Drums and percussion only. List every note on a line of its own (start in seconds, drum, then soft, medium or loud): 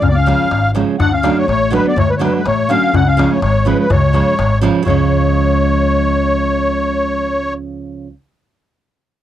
0.03 darbuka dum medium
0.16 darbuka tek soft
0.27 darbuka tek medium
0.40 darbuka tek soft
0.51 darbuka tek medium
0.64 darbuka tek soft
0.76 darbuka tek medium
0.88 darbuka tek soft
1.00 darbuka dum loud
1.24 darbuka tek medium
1.37 darbuka tek soft
1.49 darbuka tek medium
1.73 darbuka tek medium
1.98 darbuka dum loud
2.22 darbuka tek medium
2.35 darbuka tek soft
2.46 darbuka tek medium
2.70 darbuka tek medium
2.94 darbuka dum loud
3.19 darbuka tek medium
3.32 darbuka tek soft
3.42 darbuka tek medium
3.67 darbuka tek medium
3.90 darbuka dum loud
4.04 darbuka tek soft
4.15 darbuka tek medium
4.28 darbuka tek soft
4.39 darbuka tek medium
4.63 darbuka tek medium
4.75 darbuka tek soft
4.86 darbuka dum medium